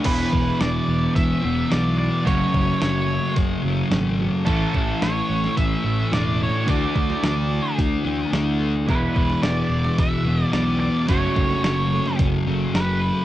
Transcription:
<<
  \new Staff \with { instrumentName = "Lead electric guitar" } { \time 4/4 \key e \mixolydian \tempo 4 = 109 b'4 d''4 e''4 d''8 d''8 | cis''4 cis''4 r2 | a'4 cis''4 e''4 d''8 cis''8 | d''4 d''4 r2 |
b'4 d''4 e''4 d''8 d''8 | cis''4 cis''4 r4 b'4 | }
  \new Staff \with { instrumentName = "Overdriven electric guitar" } { \time 4/4 \key e \mixolydian <e b e' gis' b'>1 | <fis a cis' fis'>1 | <a, e a cis' e'>1 | <d a d' fis'>1 |
<e gis b e'>1 | <fis a cis' fis'>1 | }
  \new Staff \with { instrumentName = "Clean electric guitar" } { \clef bass \time 4/4 \key e \mixolydian e8 b8 e8 b8 e'8 e8 b8 e8 | fis8 a8 fis8 a8 cis'8 fis8 a8 fis8 | e8 a8 e8 a8 cis'8 e8 a8 e8 | e8 a8 e8 a8 e'8 e8 a8 e8 |
e8 b8 e8 b8 e'8 e8 b8 e8 | fis8 a8 fis8 a8 cis'8 fis8 a8 fis8 | }
  \new Staff \with { instrumentName = "Distorted electric guitar" } { \clef bass \time 4/4 \key e \mixolydian <e, b, e>2~ <e, b, e>8 <e, b, e>8 <e, b, e>4 | <fis, cis fis>2~ <fis, cis fis>8 <fis, cis fis>8 <fis, cis fis>4 | <a, e a>2~ <a, e a>8 <a, e a>8 <a, e a>4 | <d a d'>2~ <d a d'>8 <d a d'>8 <d a d'>4 |
<e, b, e>2~ <e, b, e>8 <e, b, e>8 <e, b, e>4 | <fis, cis fis>2~ <fis, cis fis>8 <fis, cis fis>8 <fis, cis fis>4 | }
  \new Staff \with { instrumentName = "Fingered electric bass" } { \clef bass \time 4/4 \key e \mixolydian e,,8 e,,8 e,,8 e,,8 e,,8 e,,8 b,,4 | fis,,8 fis,,8 fis,,4 fis,,8 fis,,8 gis,,4 | a,,8 a,,8 a,,8 a,,8 a,,8 a,,8 e,,4 | d,8 d,8 d,4 d,8 d,8 d,4 |
e,,8 e,,8 e,,8 e,,8 e,,8 e,,8 b,,4 | fis,,8 fis,,8 fis,,4 fis,,8 fis,,8 fis,,4 | }
  \new DrumStaff \with { instrumentName = "Drums" } \drummode { \time 4/4 <cymc hho bd>8 bd8 <hho sn>4 <hho bd>4 <hho sn>4 | <hho bd>8 bd8 <hho sn>4 <hho bd>4 <hho sn>4 | <hho bd>8 bd8 <hho sn>8. sn16 <hho bd>4 <hho sn>4 | <hho bd>8 bd16 sn16 <hho sn>4 <hho bd>4 <hho sn>4 |
<hho bd>8 bd16 sn16 <hho sn>8. sn16 <hho bd>4 <hho sn>4 | <hho bd>8 bd16 sn16 <hho sn>8. sn16 <hho bd>4 <hho sn>4 | }
>>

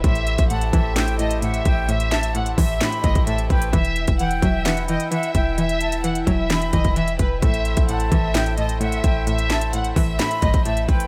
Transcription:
<<
  \new Staff \with { instrumentName = "Flute" } { \time 4/4 \key a \dorian \tempo 4 = 130 r4 a''4 g''8 a''8 fis''8 g''8 | r8 a''8 r4 b''4 a''8 g''8 | r4 g''4 fis''8 g''8 fis''8 g''8 | r8 a''8 r4 b''4 r4 |
r4 a''4 g''8 a''8 fis''8 g''8 | r8 a''8 r4 b''4 a''8 g''8 | }
  \new Staff \with { instrumentName = "Violin section" } { \time 4/4 \key a \dorian e''4 fis''8 e''4 dis''8 e''4 | e''4 fis''8 e''4 dis''8 e''8 b'8 | e''4 fis''8 e''4 dis''8 e''4 | e''4 fis''8 e''4 dis''8 e''8 b'8 |
e''4 fis''8 e''4 dis''8 e''4 | e''4 fis''8 e''4 dis''8 e''8 b'8 | }
  \new Staff \with { instrumentName = "Harmonium" } { \time 4/4 \key a \dorian << { <a g' c''>1~ | <a g' c''>1 | <e g''>1~ | <e g''>1 |
<a c''>1~ | <a c''>1 | } \\ { e'1~ | e'1~ | e'1~ | e'1~ |
e'1~ | e'1 | } >> }
  \new Staff \with { instrumentName = "Synth pluck" } { \clef bass \time 4/4 \key a \dorian a,4 a,8 e8 a,8 a,8 a,4 | a,4 a,8 e8 a,8 a,8 a,4 | e4 e8 fis8 e8 e8 e4 | e4 e8 fis8 e8 e8 e4 |
a,4 a,8 e8 a,8 a,8 a,4 | a,4 a,8 e8 a,8 a,8 a,4 | }
  \new Staff \with { instrumentName = "808-style bass" } { \clef bass \time 4/4 \key a \dorian a,,8. a,,8. a,,2 a,,8~ | a,,4. a,,8 r8 g,,16 a,,8. a,,8 | e,,8. e,,8. e,,4~ e,,16 r8. e,,8~ | e,,4. e,,4 e,,16 e,,8. e,,8 |
a,,8. a,,8. a,,2 a,,8~ | a,,4. a,,8 r8 g,,16 a,,8. a,,8 | }
  \new DrumStaff \with { instrumentName = "Drums" } \drummode { \time 4/4 <hh bd>16 hh16 hh16 <hh bd>16 hh16 hh16 <hh bd>8 <hc hh sn>16 hh16 hh16 hh16 hh16 hh16 <hh bd>8 | hh16 hh16 <hc hh sn>16 hh16 hh16 hh16 <hho bd>8 <hc hh sn>16 hh16 <hh bd>16 <hh bd>16 hh16 hh16 <hh bd>16 hh16 | <hh bd>16 hh16 hh16 <hh bd>16 hh16 hh16 <hh bd>8 <hc hh sn>16 hh16 hh16 hh16 hh16 hh16 <hh bd>8 | hh16 hh16 hh16 hh16 hh16 hh16 <hh bd>8 <hc hh sn>16 hh16 <hh bd>16 <hh bd>16 hh16 hh16 <hh bd>8 |
<hh bd>16 hh16 hh16 <hh bd>16 hh16 hh16 <hh bd>8 <hc hh sn>16 hh16 hh16 hh16 hh16 hh16 <hh bd>8 | hh16 hh16 <hc hh sn>16 hh16 hh16 hh16 <hho bd>8 <hc hh sn>16 hh16 <hh bd>16 <hh bd>16 hh16 hh16 <hh bd>16 hh16 | }
>>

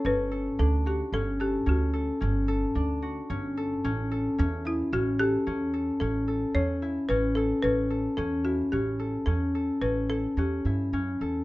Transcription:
<<
  \new Staff \with { instrumentName = "Marimba" } { \time 7/4 \key a \mixolydian \tempo 4 = 110 b'4 a'8 g'8 a'8 g'8 fis'2. r4 | r4. e'8 fis'8 g'4. a'4 cis''4 b'8 a'8 | b'4 a'8 fis'8 g'4 a'4 b'8 a'8 g'4. r8 | }
  \new Staff \with { instrumentName = "Harp" } { \time 7/4 \key a \mixolydian cis'8 a'8 d'8 fis'8 cis'8 a'8 cis'8 a'8 cis'8 a'8 d'8 fis'8 cis'8 a'8 | cis'8 a'8 cis'8 e'8 cis'8 a'8 cis'8 a'8 cis'8 a'8 cis'8 e'8 cis'8 a'8 | cis'8 a'8 cis'8 e'8 cis'8 a'8 cis'8 a'8 cis'8 a'8 cis'8 e'8 cis'8 a'8 | }
  \new Staff \with { instrumentName = "Upright bass" } { \clef bass \time 7/4 \key a \mixolydian g,,4 d,4 g,,4 d,4 g,,4 d,4 g,,4 | a,,4 e,4 a,,4 e,4 a,,4 e,4 a,,4 | a,,4 e,4 a,,4 e,4 a,,4 e,8 g,8 fis,8 e,8 | }
>>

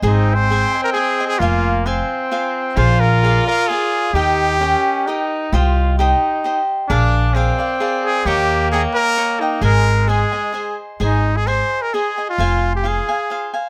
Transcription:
<<
  \new Staff \with { instrumentName = "Cavaquinho" } { \time 3/4 \key aes \major \tempo 4 = 131 <aes' c'' ees'' aes''>4 <aes' c'' ees'' aes''>8 <c'' ees'' aes''>8 <aes' c'' ees'' aes''>8 <c'' ees'' aes''>8 | <f' c'' f'' aes''>4 <f' c'' f'' aes''>4 <f' c'' f'' aes''>4 | <aes' bes' d'' f''>4 <aes' bes' d'' f''>8 <bes' d'' f''>8 <aes' bes' d'' f''>4 | <g' bes' ees'' g''>4 <g' bes' ees'' g''>4 <g' bes' ees'' g''>4 |
<g' c'' ees'' g''>4 <g' c'' ees'' g''>4 <g' c'' ees'' g''>4 | <aes' bes' d'' f''>4 <aes' bes' d'' f''>8 <bes' d'' f''>8 <aes' bes' d'' f''>4 | <des'' ees'' g'' bes''>4 <des'' ees'' g'' bes''>4 <des'' ees'' g'' bes''>8 <ees'' g'' bes''>8 | <aes' c'' ees'' aes''>4 <aes' c'' ees'' aes''>8 <c'' ees'' aes''>8 <aes' c'' ees'' aes''>4 |
<aes' c'' ees'' aes''>4 <aes' c'' ees'' aes''>4 <aes' c'' ees'' aes''>8 <c'' ees'' aes''>8 | <f' c'' f'' aes''>4 <f' c'' f'' aes''>8 <c'' f'' aes''>8 <f' c'' f'' aes''>8 <c'' f'' aes''>8 | }
  \new Staff \with { instrumentName = "Trumpet" } { \time 3/4 \key aes \major \tuplet 3/2 { ees'4 c''8~ } c''8. bes'16 aes'8. aes'16 | f'4 r2 | c''8 bes'4 bes'8 aes'4 | g'2~ g'8 r8 |
r2. | r2 r8 aes'8 | g'4 aes'8 bes'4 ees'8 | bes'4 aes'4. r8 |
ees'8. aes'16 c''8. bes'16 aes'8. f'16~ | f'8. g'16 aes'4. r8 | }
  \new Staff \with { instrumentName = "Trumpet" } { \time 3/4 \key aes \major c'2. | bes4 c'2 | f'2. | ees'4 des'4 ees'4 |
f'4 ees'4. r8 | d'4 c'2 | bes2. | aes2~ aes8 r8 |
r2. | r2. | }
  \new Staff \with { instrumentName = "Upright bass" } { \clef bass \time 3/4 \key aes \major aes,,2 r4 | f,,2 r4 | bes,,2 r4 | ees,2 r4 |
c,2 r4 | bes,,2 r4 | ees,2 r4 | aes,,2 r4 |
aes,,2 r4 | f,,2 r4 | }
>>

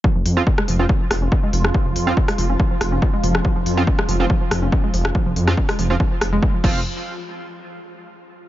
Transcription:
<<
  \new Staff \with { instrumentName = "Analog polysynth" } { \time 4/4 \key c \phrygian \tempo 4 = 141 r8. <f c' f'>16 r8. <f c' f'>16 r2 | r8. <f c' f'>16 r2. | r8. <f c' f'>16 r8. <f c' f'>16 r2 | r8. <f c' f'>16 r8. <f c' f'>16 r4. <f c' f'>8 |
r1 | }
  \new Staff \with { instrumentName = "Synth drone" } { \time 4/4 \key c \phrygian <f f'>1~ | <f f'>1~ | <f f'>1~ | <f f'>1 |
r1 | }
  \new Staff \with { instrumentName = "Synth arpeggio sound" } { \clef bass \time 4/4 \key c \phrygian f16 f16 r16 des'16 r16 aes16 f16 des'16 f16 f16 r16 des'16 r16 aes16 f16 des'16 | f16 f16 r16 des'16 r16 aes16 f16 des'16 f16 f16 r16 des'16 r16 aes16 f16 des'16 | f16 f16 r16 des'16 r16 aes16 f16 des'16 f16 f16 r16 des'16 r16 aes16 f16 des'16 | f16 f16 r16 des'16 r16 aes16 f16 des'16 f16 f16 r16 aes16 r16 f16 f8 |
r1 | }
  \new Staff \with { instrumentName = "Detuned saw bass" } { \clef bass \time 4/4 \key c \phrygian r16 f,,16 f,8 r8 f,,8 r8 f,,8 r8 f,,8 | r16 f,,16 f,8 r8 f,,8 r8 f,,8 r8 f,,8 | r16 f,,16 f,8 r8 f,,8 r8 f,,8 r8 f,,8 | r16 f,,16 f,8 r8 f,,8 r8 f,,8 r8 f,,8 |
r1 | }
  \new DrumStaff \with { instrumentName = "Drums" } \drummode { \time 4/4 bd8 hho8 bd16 ss16 hho8 bd8 <hho ss>8 bd8 hho16 ss16 | bd8 hho8 bd16 <hho ss>16 hho8 bd8 <hho ss>8 bd8 hho16 ss16 | bd8 hho8 bd16 ss16 hho8 bd8 <hho ss>8 bd8 hho16 ss16 | bd8 hho16 ss16 bd16 <hho ss>16 hho8 bd8 <hho ss>8 bd8 <cymc bd>8 |
r4 r4 r4 r4 | }
>>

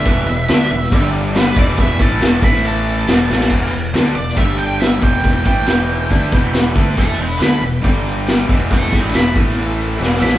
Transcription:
<<
  \new Staff \with { instrumentName = "Lead electric guitar" } { \time 4/4 \key e \minor \tempo 4 = 138 e''2~ e''8 r8 b'8 d''8 | e''8 a''4 b''8 a''2 | r4. d''8 e''8 g''8 e''8 g''8~ | g''8 g''2. r8 |
<e'' a''>8 <b' g''>8 b''8 r2 r8 | <e'' a''>8 <b' g''>8 b''8 r2 b''8 | }
  \new Staff \with { instrumentName = "Tonewheel organ" } { \time 4/4 \key e \minor << { <g e' b'>2 <g d' d''>4. <g e' b'>8~ | <g e' b'>4. <a e' e''>4. <b g' e''>4 | <b g' e''>2 <d' g' g''>4. <e' b' g''>8~ | <e' b' g''>1~ |
<e' b' g''>2 <d' g' g''>4. <b g' e''>8~ | <b g' e''>4. <a e' e''>4. <g e' b'>4 | } \\ { r1 | r1 | <a b c' d' e' f' g' a' b' c'' d''>8 r2. r8 | r1 |
r1 | r1 | } >> }
  \new Staff \with { instrumentName = "Overdriven electric guitar" } { \clef bass \time 4/4 \key e \minor <e, b, e>8 <e, b,>8 <d a d'>8 <e, b,>8 <g, d g>4. <e, b, e>8~ | <e, b, e>8 <a, e a>8 <e, b, e>8 <a, e a>4. <e, b, e>8 <a, e a>8 | <e, b, e>8 <e, b,>8 <d a d'>8 <e, b,>8 <g, d g>4. <e, b, e>8~ | <e, b, e>8 <a, e a>8 <e, b, e>4 <d a d'>8 <e, b, e>4 <d a d'>8 |
<e, b, e>8 <e, b,>8 <d a d'>8 <e, b,>8 <g, d g>4. <e, b, e>8~ | <e, b, e>8 <a, e a>8 <e, b, e>8 <a, e a>4. <e, b, e>8 <a, e a>8 | }
  \new Staff \with { instrumentName = "Fingered electric bass" } { \clef bass \time 4/4 \key e \minor e,,8 e,,8 d,8 e,,8 g,,4. e,,8~ | e,,8 a,,8 e,,8 a,,4. e,,8 a,,8 | e,,8 e,,8 d,8 e,,8 g,,4. e,,8~ | e,,8 a,,8 e,,4 d,8 e,,4 d,8 |
e,,8 e,,8 d,8 e,,8 g,,4. e,,8~ | e,,8 a,,8 e,,8 a,,4. e,,8 a,,8 | }
  \new DrumStaff \with { instrumentName = "Drums" } \drummode { \time 4/4 <hho bd>8 hho8 <hho sn>8 hho16 sn16 <hho bd>8 hho8 <hho sn>8 <hho bd>8 | <hho bd>8 <hho bd>8 <hho sn>8 <hho bd>16 sn16 hho8 hho8 <hho sn>8 sn16 sn16 | <cymc bd>8 hho8 <hho sn>8 hho16 sn16 <hho bd>8 hho8 <hho sn>8 <hho bd>8 | <hho bd>8 <hho bd>8 <hho sn>8 hho8 <hho bd>8 <hho bd>8 <hho sn>8 <hho bd>8 |
<hho bd>8 hho8 <hho sn>8 hho8 <hho bd>8 hho8 <hho sn>8 <hho bd>8 | <hho bd>8 <hho bd>8 <hho sn>8 <hho bd>16 sn16 hho8 hho8 sn16 sn16 sn8 | }
>>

